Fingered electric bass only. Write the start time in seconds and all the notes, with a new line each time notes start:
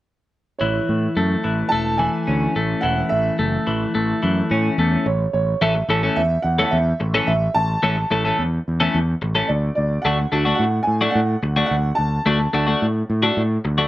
0.61 A1
0.89 A2
1.17 F#2
1.45 A1
1.72 E1
2.28 D2
2.56 A1
2.84 E1
3.12 A1
3.39 F#1
3.67 A1
3.95 A1
4.24 F#2
4.51 A2
4.78 E2
5.06 A1
5.34 A1
5.62 A1
5.89 A1
6.17 E2
6.44 E2
6.73 E2
7.01 A1
7.28 A1
7.55 A1
7.84 A1
8.12 A1
8.39 E2
8.68 E2
8.94 E2
9.22 A1
9.50 D2
9.78 D2
10.05 D2
10.33 D2
10.59 A2
10.87 A2
11.15 A2
11.43 D2
11.71 D2
11.99 D2
12.26 D2
12.54 D2
12.82 A2
13.10 A2
13.37 A2
13.65 D2